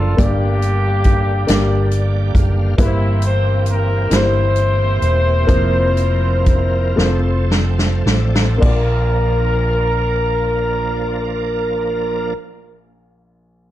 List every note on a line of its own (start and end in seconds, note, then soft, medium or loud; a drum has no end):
0.00 0.15 F#1 medium
0.00 0.15 D3 medium
0.00 0.15 F3 soft
0.00 0.15 A#3 soft
0.00 0.17 A#3 medium
0.00 0.15 D4 medium
0.00 0.18 D4 medium
0.00 0.15 F4 medium
0.00 0.16 F4 medium
0.00 0.20 F4 medium
0.00 0.20 A4 medium
0.00 0.20 F5 medium
0.17 1.45 G1 loud
0.17 1.44 G2 medium
0.17 2.75 D3 medium
0.17 2.75 G3 medium
0.17 1.25 A#3 medium
0.17 2.75 A#3 soft
0.17 1.25 D4 medium
0.17 1.25 G4 medium
0.17 2.75 G4 medium
0.17 1.26 D5 medium
0.17 kick loud
0.17 closed hi-hat medium
0.21 1.89 A#3 medium
0.21 1.89 D4 medium
0.21 1.93 G4 medium
0.62 closed hi-hat soft
1.04 kick medium
1.04 closed hi-hat soft
1.47 2.31 G1 medium
1.47 2.55 A#3 medium
1.47 2.55 D4 medium
1.47 2.55 G4 medium
1.47 2.56 D5 medium
1.47 snare medium
1.47 closed hi-hat medium
1.91 2.33 D5 medium
1.91 closed hi-hat soft
2.35 2.75 F#1 medium
2.35 2.77 F5 medium
2.35 kick medium
2.35 closed hi-hat soft
2.78 4.07 G1 medium
2.78 4.06 G2 medium
2.78 5.46 E3 medium
2.78 3.86 A#3 medium
2.78 4.08 A#3 medium
2.78 5.46 C4 soft
2.78 4.08 C4 medium
2.78 3.87 E4 medium
2.78 3.20 E4 medium
2.78 3.87 G4 medium
2.78 5.46 G4 medium
2.78 2.85 B4 medium
2.78 kick loud
2.78 closed hi-hat medium
2.82 5.46 A#3 medium
2.86 3.90 C5 medium
3.22 3.64 C5 medium
3.22 closed hi-hat medium
3.66 4.12 A#4 medium
3.66 closed hi-hat soft
4.10 4.98 G1 medium
4.10 5.23 A#3 medium
4.10 5.24 E4 medium
4.10 5.24 G4 soft
4.10 5.24 C5 medium
4.10 7.52 C5 medium
4.10 snare medium
4.10 closed hi-hat medium
4.14 7.48 E4 medium
4.56 closed hi-hat soft
5.02 5.45 E1 medium
5.02 closed hi-hat soft
5.47 6.94 F1 loud
5.47 6.70 F3 medium
5.47 6.96 F3 medium
5.47 6.69 A#3 medium
5.47 6.98 A#3 medium
5.47 6.70 C4 medium
5.47 6.96 C4 medium
5.47 6.98 A#4 medium
5.47 6.70 C5 medium
5.47 kick medium
5.47 closed hi-hat medium
5.97 closed hi-hat soft
6.46 kick medium
6.46 closed hi-hat soft
6.96 8.01 F1 medium
6.96 8.62 F3 medium
6.96 8.32 F3 medium
6.96 8.31 A3 medium
6.96 8.62 A3 medium
6.96 8.31 C4 medium
6.96 8.62 C4 medium
6.96 8.63 A4 medium
6.96 7.06 A#4 medium
6.96 snare soft
7.05 8.35 C5 medium
7.50 7.76 G5 medium
7.50 snare medium
7.77 8.03 F5 medium
7.77 snare medium
8.05 8.59 A1 medium
8.05 8.59 D5 medium
8.05 snare medium
8.35 snare medium
8.58 12.32 A#1 medium
8.58 12.29 A#3 medium
8.58 12.31 D4 medium
8.62 12.33 A#1 medium
8.62 12.33 F3 medium
8.62 12.33 A#3 medium
8.62 12.34 D4 medium
8.62 12.33 F4 medium
8.62 12.34 A#4 medium
8.62 12.35 A#4 medium
8.62 12.36 D5 medium
8.62 kick medium
8.62 crash medium